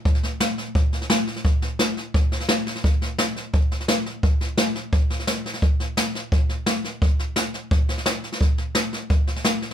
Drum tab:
HH |----p-------p---|----p-------p---|----p-------p---|----p-------p---|
SD |ooo-o-o-o-ooo-oo|o-o-o-o-o-ooo-oo|o-o-o-o-o-ooo-o-|o-o-o-o-o-ooo-oo|
BD |o-------o-------|o-------o-------|o-------o-------|o-------o-------|

HH |----p-------p---|----p-------p---|----p-------p---|
SD |o-o-o-o-o-o-o-o-|o-o-o-o-o-ooo-oo|o-o-o-o-o-ooo-o-|
BD |o-------o-------|o-------o-------|o-------o-------|